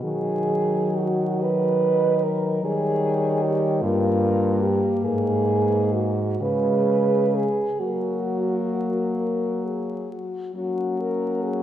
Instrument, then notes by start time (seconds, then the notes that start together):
french horn
0.03 D#3 F#3 F#4 G#4
0.96 F#4
1.39 B4 D#5
2.23 A#4
2.64 D#3 G3 G#4 C#5
3.44 G4
3.81 G2 A#3 F4 A#4
4.62 G4
5.04 G#2 G#4 B4
5.94 F#4
6.40 C#3 G#3 G#4 B4
7.35 G#4
7.79 F#3 A#3 F#4 A#4
9.18 A#4
9.65 G#4
10.12 F#4
10.55 F#3 A#3 C#4 F#4
11.01 A#4
11.43 G#4